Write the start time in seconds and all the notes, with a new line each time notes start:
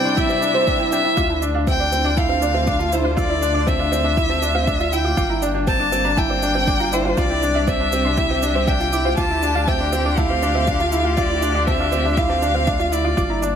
Already playing: C3 G3 E4 D5 G5
0.04 D4 C6
0.17 E4 E5 G5, kick, shaker
0.29 C4 E5, shaker
0.42 D4, shaker
0.54 C4 C5
0.67 D4 G5, kick, shaker
0.79 E4 G5
0.92 D4 E5 G5, shaker
1.05 E4 E5
1.17 D2 D3 A3 D4 F4 D6, kick, shaker
1.29 E4 A5
1.42 D4, shaker
1.55 D4 F5
1.67 C4 E5 G5, kick, shaker
1.80 D4 D5
1.92 C4, shaker
2.05 D4 D6
2.17 E4 F5 A5, kick, shaker
2.29 C4 F5
2.42 D4 D5, shaker
2.54 C4 E5
2.67 D4 D6, kick, shaker
2.79 F4 A5, shaker
2.92 E4 C5, shaker
3.04 F4 F5
3.17 F4 D5 E5, kick, shaker
3.29 E4 D5
3.42 D4, shaker
3.54 D4 D6
3.67 C4 E5 A5, kick, shaker
3.79 D4 F5
3.92 C4 D5, shaker
4.04 D4 E5
4.17 E4 D6, kick, shaker
4.30 C4 A5
4.42 D4, shaker
4.55 C4 F5
4.67 D4 E5, kick, shaker
4.80 F4 D5, shaker
4.92 E4 G5, shaker
5.05 F4 D6
5.17 G1 G3 A#3 D4 F4 D6, kick, shaker
5.30 E4 A#5
5.42 D4 D5, shaker
5.55 D4 G5
5.67 C4 A5 G6, kick, shaker
5.79 D4 D6
5.92 C4, shaker
6.05 D4 A#5
6.17 E4 G5, kick, shaker
6.29 C4 D5
6.42 D4, shaker
6.55 C4 G6
6.67 D4 D6, kick, shaker
6.80 F4 A#5, shaker
6.92 E4 C5 D5, shaker
7.05 F4 G5
7.17 C2 C3 F4 G4 D5 C6, kick, shaker
7.30 E4 G5
7.43 D4, shaker
7.55 D4 E5
7.67 C4 D5 E5, kick, shaker
7.80 D4 C5
7.92 C4, shaker
8.05 D4 C6
8.17 E4 G5, kick, shaker
8.30 C4 E5
8.42 D4, shaker
8.55 C4 C5
8.67 D4 E5 G5, kick, shaker
8.80 F4 G5, shaker
8.92 E4 D6, shaker
9.05 F4 C5
9.17 D2 D3 A3 F4 A5 D6, kick, shaker
9.30 E4 A5
9.43 D4, shaker
9.55 D4 F5
9.68 C4 E5 G5, kick, shaker
9.80 D4 D5
9.93 C4, shaker
10.05 D4 D6
10.18 E4 F5 A5, kick, shaker
10.30 C4 F5
10.42 D4 D5, shaker
10.55 C4 E5
10.67 D4 D6, kick, shaker
10.80 F4 A5, shaker
10.92 E4, shaker
11.05 F4 F5
11.17 F4 D5 E5, kick, shaker
11.30 E4 D5
11.42 D4, shaker
11.55 D4 D6
11.67 C4 E5 A5, kick, shaker
11.80 D4 F5
11.92 C4 D5, shaker
12.05 D4 E5
12.17 E4 F5 D6, kick, shaker
12.29 C4 A5
12.42 D4, shaker
12.55 C4 F5
12.67 D4 E5, kick, shaker
12.79 F4 D5, shaker
12.92 E4 D5, shaker
13.04 F4 D6
13.17 G1 G3 A#3 D4 F4 D6, kick, shaker
13.30 E4 A#5
13.42 D4 D5, shaker